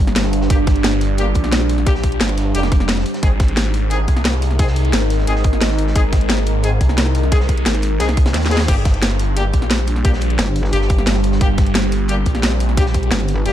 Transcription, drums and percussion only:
0.07 snare
0.16 snare, closed hi-hat
0.24 snare
0.33 closed hi-hat
0.41 snare
0.50 kick, closed hi-hat
0.67 kick, snare, closed hi-hat
0.76 closed hi-hat
0.84 snare, closed hi-hat
0.93 snare
1.01 closed hi-hat
1.18 closed hi-hat
1.35 kick, closed hi-hat
1.44 snare
1.52 snare, closed hi-hat
1.61 snare
1.69 closed hi-hat
1.78 snare
1.86 kick, closed hi-hat
1.95 snare
2.03 kick, closed hi-hat
2.12 closed hi-hat
2.20 snare, closed hi-hat
2.29 snare, closed hi-hat
2.38 snare, closed hi-hat
2.55 closed hi-hat
2.63 snare
2.72 kick, closed hi-hat
2.80 snare
2.88 snare, closed hi-hat
2.97 snare
3.06 closed hi-hat
3.14 snare, closed hi-hat
3.23 kick, closed hi-hat
3.40 kick, snare, closed hi-hat
3.48 closed hi-hat
3.57 snare, closed hi-hat
3.65 snare
3.74 closed hi-hat
3.90 closed hi-hat
4.08 kick, closed hi-hat
4.17 snare
4.25 snare, closed hi-hat
4.34 snare
4.42 closed hi-hat
4.51 snare
4.59 kick, closed hi-hat
4.67 snare
4.76 closed hi-hat
4.85 closed hi-hat
4.93 snare, closed hi-hat
5.02 snare
5.10 snare, closed hi-hat
5.19 snare
5.27 closed hi-hat
5.36 snare
5.44 kick, closed hi-hat
5.53 snare
5.61 snare, closed hi-hat
5.70 snare
5.78 closed hi-hat
5.87 snare
5.96 kick, closed hi-hat
6.12 kick, snare, closed hi-hat
6.21 closed hi-hat
6.29 snare, closed hi-hat
6.38 snare
6.46 closed hi-hat
6.63 closed hi-hat
6.81 kick, closed hi-hat
6.89 snare
6.98 snare, closed hi-hat
7.06 snare
7.15 closed hi-hat
7.23 snare
7.32 kick, closed hi-hat
7.40 snare
7.49 kick, closed hi-hat
7.58 closed hi-hat
7.66 snare, closed hi-hat
7.75 snare, closed hi-hat
7.82 closed hi-hat
8.00 snare, closed hi-hat
8.09 snare
8.17 kick, closed hi-hat
8.26 snare, closed hi-hat
8.34 snare, closed hi-hat
8.42 snare, closed hi-hat
8.51 snare, closed hi-hat
8.57 snare, closed hi-hat
8.60 snare
8.68 kick, closed hi-hat, crash
8.85 kick, snare, closed hi-hat
8.94 closed hi-hat
9.02 snare, closed hi-hat
9.11 snare
9.19 closed hi-hat
9.36 closed hi-hat
9.53 kick, closed hi-hat
9.62 snare
9.70 snare, closed hi-hat
9.79 snare
9.87 closed hi-hat
9.96 snare
10.05 kick, closed hi-hat
10.13 snare
10.21 closed hi-hat
10.30 closed hi-hat
10.38 snare, closed hi-hat
10.47 snare
10.55 snare, closed hi-hat
10.64 snare
10.72 closed hi-hat
10.81 snare
10.89 kick, closed hi-hat
10.98 snare
11.06 snare, closed hi-hat
11.15 snare
11.23 closed hi-hat
11.32 snare
11.41 kick, closed hi-hat
11.58 kick, snare, closed hi-hat
11.67 closed hi-hat
11.75 snare, closed hi-hat
11.84 snare
11.92 closed hi-hat
12.08 closed hi-hat
12.26 kick, closed hi-hat
12.35 snare
12.43 snare, closed hi-hat
12.52 snare
12.60 closed hi-hat
12.69 snare
12.77 kick, closed hi-hat
12.86 snare
12.94 kick, closed hi-hat
13.03 closed hi-hat
13.11 snare, closed hi-hat
13.20 snare, closed hi-hat
13.28 snare, closed hi-hat
13.46 closed hi-hat

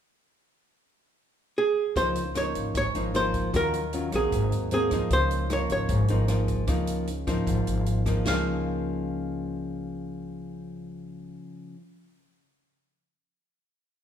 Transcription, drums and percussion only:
1.96 kick, closed hi-hat
2.16 closed hi-hat
2.35 cross-stick, closed hi-hat
2.55 closed hi-hat
2.75 kick, closed hi-hat
2.95 closed hi-hat
3.15 cross-stick, closed hi-hat
3.34 kick, closed hi-hat
3.54 kick, cross-stick, closed hi-hat
3.74 closed hi-hat
3.93 closed hi-hat
4.12 cross-stick, closed hi-hat
4.32 kick, closed hi-hat
4.52 closed hi-hat
4.71 closed hi-hat
4.91 kick, cross-stick, closed hi-hat
5.10 kick, closed hi-hat
5.31 closed hi-hat
5.50 cross-stick, closed hi-hat
5.70 closed hi-hat
5.89 kick, closed hi-hat
6.08 closed hi-hat
6.28 cross-stick, closed hi-hat
6.48 kick, closed hi-hat
6.67 kick, cross-stick, closed hi-hat
6.87 closed hi-hat
7.07 closed hi-hat
7.27 kick, cross-stick, closed hi-hat
7.47 kick, closed hi-hat
7.67 closed hi-hat
7.86 closed hi-hat
8.06 kick, cross-stick, closed hi-hat
8.25 snare, splash

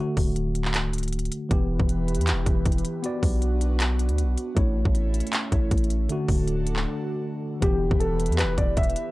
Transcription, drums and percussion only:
0.17 kick, open hi-hat
0.36 closed hi-hat
0.55 closed hi-hat
0.65 clap
0.74 clap, closed hi-hat
0.93 closed hi-hat
0.98 closed hi-hat
1.03 closed hi-hat
1.08 closed hi-hat
1.13 closed hi-hat
1.19 closed hi-hat
1.25 closed hi-hat
1.32 closed hi-hat
1.51 kick, closed hi-hat
1.80 kick
1.89 closed hi-hat
2.08 closed hi-hat
2.15 closed hi-hat
2.21 closed hi-hat
2.27 clap, closed hi-hat
2.46 kick, closed hi-hat
2.65 kick, closed hi-hat
2.72 closed hi-hat
2.78 closed hi-hat
2.85 closed hi-hat
3.04 closed hi-hat
3.23 kick, open hi-hat
3.42 closed hi-hat
3.61 closed hi-hat
3.80 clap, closed hi-hat
3.99 closed hi-hat
4.09 closed hi-hat
4.18 closed hi-hat
4.38 closed hi-hat
4.57 kick, closed hi-hat
4.85 kick
4.95 closed hi-hat
5.14 closed hi-hat
5.20 closed hi-hat
5.27 closed hi-hat
5.33 clap, closed hi-hat
5.52 kick, closed hi-hat
5.71 kick, closed hi-hat
5.78 closed hi-hat
5.84 closed hi-hat
5.90 closed hi-hat
6.09 closed hi-hat
6.28 kick, open hi-hat
6.47 closed hi-hat
6.67 closed hi-hat
6.76 clap
7.62 kick, closed hi-hat
7.91 kick
8.00 closed hi-hat
8.20 closed hi-hat
8.26 closed hi-hat
8.32 closed hi-hat
8.39 clap, closed hi-hat
8.58 kick, closed hi-hat
8.77 kick, closed hi-hat
8.83 closed hi-hat
8.90 closed hi-hat
8.96 closed hi-hat

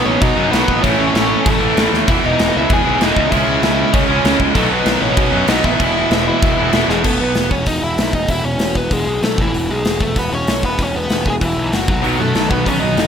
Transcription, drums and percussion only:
0.22 kick, crash
0.53 snare, crash
0.68 kick
0.84 kick, crash
1.15 snare, crash
1.46 kick, crash
1.77 snare, crash
1.94 snare
2.08 kick, crash
2.39 snare, crash
2.70 kick, crash
3.01 snare, crash
3.17 kick
3.32 kick, crash
3.63 snare, crash
3.94 kick, crash
4.25 snare, crash
4.40 kick
4.55 kick, crash
4.86 snare, crash
5.17 kick, crash
5.48 snare, crash
5.64 kick
5.80 kick, crash
6.11 snare, crash
6.42 kick, crash
6.73 snare, crash
6.90 snare
7.04 kick, crash
7.35 snare, open hi-hat
7.51 kick
7.66 kick, open hi-hat
7.98 snare, open hi-hat
8.13 kick
8.28 kick, open hi-hat
8.59 snare, open hi-hat
8.75 kick
8.91 kick, open hi-hat
9.23 snare, open hi-hat
9.38 kick
9.54 open hi-hat
9.85 snare, open hi-hat
10.00 kick
10.16 kick, open hi-hat
10.47 snare, open hi-hat
10.63 kick
10.79 kick, open hi-hat
11.10 snare, open hi-hat
11.26 kick
11.41 kick, open hi-hat
11.73 snare, open hi-hat
11.88 kick
12.04 open hi-hat
12.35 snare, open hi-hat
12.51 kick
12.66 kick, open hi-hat
12.97 snare, open hi-hat

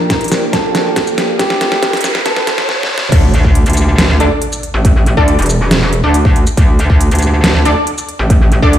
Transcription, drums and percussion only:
0.10 kick, snare, closed hi-hat
0.21 closed hi-hat
0.24 closed hi-hat
0.28 snare, closed hi-hat, shaker
0.53 kick, snare, closed hi-hat
0.75 snare, closed hi-hat
0.96 kick, snare, closed hi-hat
1.07 shaker
1.18 snare, closed hi-hat
1.39 kick, snare, closed hi-hat
1.50 snare
1.61 snare, closed hi-hat
1.72 snare
1.83 kick, snare, closed hi-hat
1.93 snare, closed hi-hat
1.97 closed hi-hat
2.01 snare, closed hi-hat, shaker
2.15 snare
2.26 kick, snare, closed hi-hat
2.37 snare
2.47 snare, closed hi-hat
2.58 snare
2.69 snare
2.83 snare
2.98 snare
3.12 kick, closed hi-hat, crash
3.34 closed hi-hat
3.44 kick
3.55 closed hi-hat
3.66 closed hi-hat
3.70 closed hi-hat
3.73 closed hi-hat, shaker
3.98 snare, closed hi-hat
4.20 closed hi-hat
4.42 closed hi-hat
4.52 shaker
4.63 closed hi-hat
4.85 kick, closed hi-hat
5.06 closed hi-hat
5.17 kick
5.28 closed hi-hat
5.39 closed hi-hat
5.42 closed hi-hat
5.46 closed hi-hat, shaker
5.71 snare, closed hi-hat
5.93 closed hi-hat
6.14 closed hi-hat
6.25 kick
6.36 closed hi-hat
6.47 closed hi-hat, shaker
6.57 kick, closed hi-hat
6.79 closed hi-hat
6.90 kick
7.01 closed hi-hat
7.11 closed hi-hat
7.15 closed hi-hat
7.19 closed hi-hat, shaker
7.44 snare, closed hi-hat
7.65 closed hi-hat
7.87 closed hi-hat
7.98 shaker
8.09 closed hi-hat
8.30 kick, closed hi-hat
8.52 closed hi-hat
8.62 kick
8.73 closed hi-hat

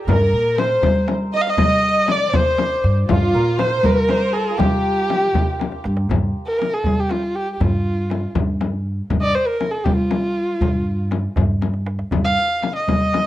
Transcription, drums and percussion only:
0.07 tombak dum, frame drum
0.33 tombak ka
0.58 tombak tek, frame drum
0.83 tombak dum, frame drum
1.08 tombak tek, frame drum
1.33 tombak ka
1.57 tombak dum, frame drum
2.08 tombak tek, frame drum
2.33 frame drum, tombak dum
2.58 tombak tek, frame drum
2.85 tombak ka
3.09 frame drum, tombak dum
3.35 tombak ka
3.59 tombak tek, frame drum
3.84 tombak dum, frame drum
4.09 tombak tek, frame drum
4.34 tombak ka
4.59 tombak dum, frame drum
5.10 tombak tek, frame drum
5.34 tombak dum, frame drum
5.60 tombak tek, frame drum
5.72 tombak ka
5.84 tombak tek
5.97 tombak ka
6.09 tombak dum, frame drum
6.59 tombak tek, frame drum
6.84 tombak dum, frame drum
7.09 tombak tek, frame drum
7.36 tombak ka
7.61 tombak dum, frame drum
8.10 tombak tek, frame drum
8.35 tombak dum, frame drum
8.61 tombak tek, frame drum
8.87 tombak ka
9.10 tombak dum, frame drum
9.61 tombak tek, frame drum
9.85 tombak dum, frame drum
10.11 tombak tek, frame drum
10.36 tombak ka
10.61 tombak dum, frame drum
10.86 tombak ka
11.11 tombak tek, frame drum
11.36 tombak dum, frame drum
11.62 tombak tek, frame drum
11.74 tombak ka
11.86 tombak tek
11.99 tombak ka
12.11 tombak dum, frame drum
12.62 tombak tek, frame drum
12.88 tombak dum, frame drum
13.13 tombak tek, frame drum

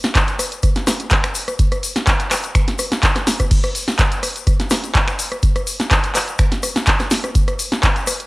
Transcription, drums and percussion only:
0.03 snare, closed hi-hat, shaker
0.15 kick, cross-stick, clap, closed hi-hat, shaker
0.27 closed hi-hat, shaker
0.39 cross-stick, open hi-hat, shaker
0.52 closed hi-hat, shaker
0.63 kick, cross-stick, closed hi-hat, shaker
0.75 snare, closed hi-hat, shaker
0.87 cross-stick, snare, open hi-hat, shaker
1.00 closed hi-hat, shaker
1.10 kick, clap, closed hi-hat, shaker
1.24 finger snap, cross-stick, closed hi-hat, shaker
1.35 open hi-hat, shaker
1.48 cross-stick, closed hi-hat, shaker
1.59 kick, closed hi-hat, shaker
1.72 cross-stick, closed hi-hat, shaker
1.83 open hi-hat, shaker
1.96 snare, closed hi-hat, shaker
2.07 kick, cross-stick, clap, closed hi-hat, shaker
2.20 closed hi-hat, shaker
2.31 finger snap, cross-stick, clap, open hi-hat, shaker
2.43 closed hi-hat, shaker
2.55 finger snap, kick, cross-stick, closed hi-hat, shaker
2.68 snare, closed hi-hat, shaker
2.79 cross-stick, open hi-hat, shaker
2.92 snare, closed hi-hat, shaker
3.03 kick, clap, closed hi-hat, shaker
3.15 cross-stick, snare, closed hi-hat, shaker
3.27 snare, open hi-hat, shaker
3.39 kick, cross-stick, closed hi-hat, shaker
3.51 kick, closed hi-hat, crash, shaker
3.63 cross-stick, closed hi-hat, shaker
3.75 open hi-hat, shaker
3.88 snare, closed hi-hat, shaker
3.99 kick, cross-stick, clap, closed hi-hat, shaker
4.12 closed hi-hat, shaker
4.23 cross-stick, open hi-hat, shaker
4.36 closed hi-hat, shaker
4.47 kick, cross-stick, closed hi-hat, shaker
4.60 snare, closed hi-hat, shaker
4.70 cross-stick, snare, open hi-hat, shaker
4.84 closed hi-hat, shaker
4.95 kick, clap, closed hi-hat, shaker
5.08 finger snap, cross-stick, closed hi-hat, shaker
5.19 open hi-hat, shaker
5.32 cross-stick, closed hi-hat, shaker
5.43 kick, closed hi-hat, shaker
5.56 cross-stick, closed hi-hat, shaker
5.67 open hi-hat, shaker
5.80 snare, closed hi-hat, shaker
5.91 kick, cross-stick, clap, closed hi-hat, shaker
6.04 closed hi-hat, shaker
6.15 cross-stick, clap, open hi-hat, shaker
6.28 closed hi-hat, shaker
6.38 finger snap, kick, cross-stick, closed hi-hat, shaker
6.52 snare, closed hi-hat, shaker
6.63 cross-stick, open hi-hat, shaker
6.76 snare, closed hi-hat, shaker
6.86 kick, clap, closed hi-hat, shaker
6.99 cross-stick, snare, closed hi-hat, shaker
7.10 snare, open hi-hat, shaker
7.24 cross-stick, closed hi-hat, shaker
7.35 kick, closed hi-hat, shaker
7.47 cross-stick, closed hi-hat, shaker
7.59 open hi-hat, shaker
7.72 snare, closed hi-hat, shaker
7.83 kick, cross-stick, clap, closed hi-hat, shaker
7.96 closed hi-hat, shaker
8.07 cross-stick, open hi-hat, shaker
8.20 closed hi-hat

